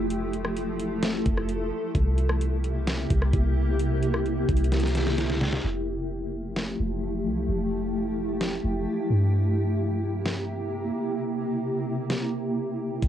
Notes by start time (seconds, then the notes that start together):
Already playing: F1 F3 A3 E4
0.10 A4, closed hi-hat
0.33 closed hi-hat
0.45 cross-stick
0.56 closed hi-hat
0.79 closed hi-hat
1.02 snare, closed hi-hat
1.26 F1, kick, closed hi-hat
1.37 cross-stick
1.49 closed hi-hat
1.60 E1
1.95 C2 C3 A#3 E4 G4, kick, closed hi-hat
2.18 closed hi-hat
2.29 cross-stick
2.41 closed hi-hat
2.64 closed hi-hat
2.87 snare, closed hi-hat
3.10 C2, kick, closed hi-hat
3.22 cross-stick
3.33 C2, kick, closed hi-hat
3.80 closed hi-hat
4.03 closed hi-hat
4.14 cross-stick
4.26 closed hi-hat
4.49 C2, kick, closed hi-hat, open hi-hat
4.57 closed hi-hat
4.64 closed hi-hat
4.72 snare, closed hi-hat
4.80 snare, closed hi-hat
4.87 closed hi-hat
4.95 snare, closed hi-hat
5.07 snare
5.18 snare, closed hi-hat
5.30 snare
5.41 snare
5.53 snare
5.64 F1 F3 A3 E4 G4
6.56 snare
6.80 F1
7.26 C2
7.49 F1
8.41 snare
8.64 F1
9.10 G2
9.33 C3 A#3
10.25 snare
12.10 snare
13.03 F1, kick, closed hi-hat